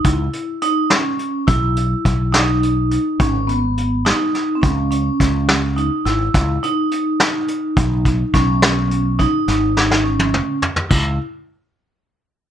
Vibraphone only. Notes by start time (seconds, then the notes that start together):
0.05 E4
0.62 D#4
0.90 C#4
1.47 E4
2.32 D#4
3.20 C#4
3.47 B3
4.05 D#4
4.55 C4
4.62 C#4
4.91 C#4
5.76 D#4
6.06 E4
6.63 D#4
8.34 C#4
9.19 D#4
10.04 C#4
10.90 E4